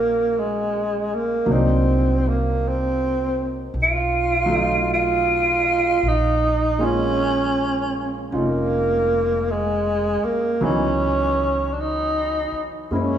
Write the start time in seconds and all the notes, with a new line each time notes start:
Already playing: A#1 F#3 A#3 C#4 D#4 F4 F#4
0.39 G#3
1.14 A#3
1.46 C2 F#3 A#3 D4
1.50 C4 D#4
2.29 A#3
2.68 C4
3.74 B1
3.82 F4
4.46 F#3 A3
4.52 D#4 F4
4.93 F4
6.03 A#1
6.08 D#4
6.79 G#3 A#3 C#4 F4
6.85 C#4
8.31 F1 C#4 D#4 F4
8.36 A#3
9.51 G#3
10.23 A#3, muted upright bass stroke
10.61 C#2 E3 F#3 B3 C#4 D#4
11.73 D4
11.80 D#4
12.52 muted upright bass stroke
12.91 F#2 G#3 A#3 C#4 E4